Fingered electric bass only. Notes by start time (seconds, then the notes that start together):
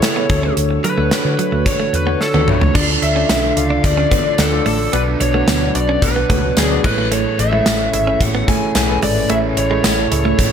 0.30 D2
0.57 D2
0.98 D2
1.25 D3
1.52 D2
1.93 E2
2.34 D2
2.48 B1
2.61 C#2
2.75 D2
3.02 D2
3.30 B1
3.57 C#2
3.84 D2
4.39 D2
4.66 A1
4.93 B1
5.20 B1
5.48 D2
5.75 B1
6.02 B1
6.30 C#2
6.57 D2
6.84 A1
7.39 A1
7.66 A1
7.93 G#1
8.21 A1
8.75 B1
9.03 G#1
9.30 A1
9.57 A1
9.84 A1
10.12 C#2
10.39 A1